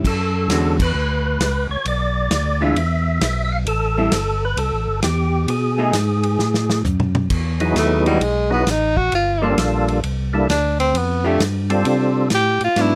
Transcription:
0.04 0.48 F#2 medium
0.04 0.77 A4 medium
0.04 kick medium
0.04 crash medium
0.48 0.93 E2 medium
0.48 0.77 D3 medium
0.48 0.77 G#3 medium
0.48 0.77 C#4 medium
0.48 0.77 F#4 medium
0.48 snare medium
0.48 hi-hat pedal medium
0.48 ride medium
0.80 1.67 B4 medium
0.80 kick medium
0.80 crash medium
0.94 1.38 D2 medium
1.39 1.67 C#2 medium
1.39 snare medium
1.39 hi-hat pedal medium
1.39 ride medium
1.69 1.77 C#2 soft
1.69 1.86 C#5 medium
1.85 2.29 B1 medium
1.85 2.64 D5 loud
1.85 ride medium
2.31 2.75 D2 medium
2.31 snare medium
2.31 hi-hat pedal medium
2.31 ride medium
2.61 2.75 E3 medium
2.61 2.75 G#3 medium
2.61 2.75 D4 medium
2.61 2.75 F4 medium
2.61 3.43 E5 medium
2.75 3.20 E2 medium
2.75 ride medium
3.21 3.65 B1 medium
3.21 snare medium
3.21 hi-hat pedal medium
3.21 ride medium
3.45 3.52 E5 medium
3.52 3.59 F5 loud
3.66 4.10 A1 medium
3.66 4.45 A4 loud
3.66 ride medium
3.97 4.11 G3 medium
3.97 4.11 C4 medium
3.97 4.12 E4 medium
4.11 4.56 G1 medium
4.11 snare medium
4.11 hi-hat pedal medium
4.11 ride medium
4.45 4.59 B4 medium
4.57 4.72 C2 medium
4.57 5.00 A4 medium
4.57 ride medium
4.72 4.88 A1 medium
4.88 5.02 G1 medium
5.02 5.47 E2 medium
5.02 5.50 G4 medium
5.02 snare medium
5.02 hi-hat pedal medium
5.02 ride medium
5.48 5.92 B2 medium
5.48 6.81 G#4 medium
5.48 ride medium
5.78 5.92 A3 medium
5.78 5.93 D#4 medium
5.78 5.93 G#4 medium
5.93 6.38 G#2 medium
5.93 snare medium
5.93 hi-hat pedal medium
5.93 ride medium
6.23 ride soft
6.39 6.83 A2 medium
6.39 snare soft
6.54 snare medium
6.70 snare medium
6.85 7.29 F#2 medium
6.85 floor tom medium
6.85 hi-hat pedal medium
7.00 mid tom medium
7.15 mid tom medium
7.30 7.74 E2 medium
7.30 kick medium
7.30 crash medium
7.60 8.18 F#3 medium
7.60 8.18 B3 medium
7.60 8.18 D#4 medium
7.60 8.18 E4 medium
7.60 8.18 G#4 medium
7.60 ride soft
7.75 8.19 D#2 medium
7.75 8.05 A3 medium
7.75 snare medium
7.75 hi-hat pedal medium
7.75 ride medium
8.06 8.20 E3 medium
8.06 8.24 G3 medium
8.06 8.20 G#3 medium
8.06 8.20 D#4 medium
8.06 8.20 F#4 medium
8.06 ride soft
8.20 8.65 B1 medium
8.20 8.52 G#3 medium
8.20 ride medium
8.50 8.65 F#3 medium
8.50 8.65 B3 medium
8.50 8.72 B3 medium
8.50 8.65 D#4 medium
8.50 8.65 E4 medium
8.50 8.65 G#4 medium
8.65 9.10 A1 medium
8.65 snare medium
8.65 hi-hat pedal medium
8.65 ride medium
8.70 8.99 D#4 medium
8.97 9.12 F#4 loud
8.97 kick medium
9.12 9.56 G1 medium
9.12 9.56 F4 medium
9.12 ride medium
9.42 9.56 F3 medium
9.42 10.00 G3 medium
9.42 10.00 A#3 medium
9.42 9.57 A#3 medium
9.42 10.00 D4 medium
9.42 9.57 D4 medium
9.42 10.00 F4 medium
9.42 10.00 A4 medium
9.57 10.02 A#1 medium
9.57 snare medium
9.57 hi-hat pedal medium
9.57 ride medium
9.88 ride soft
10.03 10.48 C2 medium
10.03 ride medium
10.33 10.48 G3 medium
10.33 10.47 A#3 medium
10.33 10.47 D4 medium
10.33 10.48 E4 medium
10.33 10.48 A4 medium
10.49 10.93 D2 medium
10.49 10.78 D4 medium
10.49 snare medium
10.49 hi-hat pedal medium
10.49 ride medium
10.80 10.99 C4 medium
10.80 ride soft
10.94 11.39 F2 medium
10.94 11.29 B3 medium
10.94 ride medium
11.24 11.38 F3 medium
11.24 11.39 A3 medium
11.24 11.42 A3 medium
11.24 11.39 D4 medium
11.24 11.39 G4 medium
11.40 11.84 G2 medium
11.40 snare medium
11.40 hi-hat pedal medium
11.40 ride medium
11.70 12.28 G3 medium
11.70 12.28 C4 medium
11.70 12.29 D4 medium
11.70 12.28 F4 medium
11.70 12.28 A4 medium
11.70 ride soft
11.85 12.30 C3 medium
11.85 ride medium
12.30 12.59 A2 medium
12.30 snare medium
12.30 hi-hat pedal medium
12.30 ride medium
12.35 12.61 G4 medium
12.60 12.69 A2 soft
12.60 12.82 F4 medium
12.60 ride soft
12.76 12.95 G#2 medium
12.76 12.95 F#3 medium
12.76 12.95 B3 medium
12.76 12.95 D4 medium
12.76 snare soft
12.76 ride medium
12.81 12.95 E4 medium

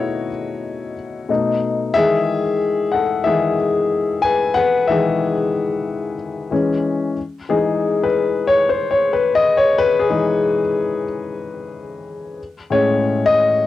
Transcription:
0.00 0.27 B2 medium
0.00 0.28 A3 soft
0.00 0.28 D#4 medium
0.00 0.93 E4 medium
0.00 1.31 F#4 medium
0.00 0.91 C#5 medium
0.00 1.31 D#5 medium
1.29 1.91 B2 soft
1.29 1.91 A3 soft
1.29 1.92 D#4 medium
1.94 2.40 D#3 medium
1.94 2.39 E3 soft
1.94 2.40 G#3 medium
1.94 2.56 G#4 medium
1.94 2.55 E5 loud
2.92 3.01 A4 medium
2.92 2.99 F#5 medium
3.24 3.55 D#3 soft
3.24 3.54 E3 soft
3.24 3.55 G#3 soft
3.24 4.19 G#4 medium
3.24 4.18 E5 medium
4.22 4.54 B4 medium
4.22 4.56 G#5 loud
4.54 4.87 B4 medium
4.54 4.88 F#5 loud
4.87 5.34 D#3 medium
4.87 5.33 E3 medium
4.87 5.34 G#3 soft
4.87 6.16 G#4 medium
4.87 6.14 E5 medium
6.51 7.13 E3 soft
6.51 7.13 G#3 soft
6.51 7.13 C#4 medium
7.49 10.06 E3 soft
7.49 10.06 G#3 soft
7.49 10.06 D#4 medium
7.49 8.05 G#4 medium
8.04 8.48 B4 medium
8.47 8.69 C#5 medium
8.69 8.91 C5 medium
8.91 9.13 C#5 medium
9.13 9.35 B4 medium
9.35 9.57 D#5 loud
9.57 9.79 C#5 medium
9.78 9.98 B4 loud
10.00 10.60 G#4 medium
10.09 11.03 E3 medium
10.09 11.04 G#3 soft
10.09 11.04 D#4 medium
12.70 13.64 A2 medium
12.70 13.65 G#3 medium
12.70 13.65 C#4 medium
12.70 13.27 C#5 medium
13.26 13.67 D#5 loud

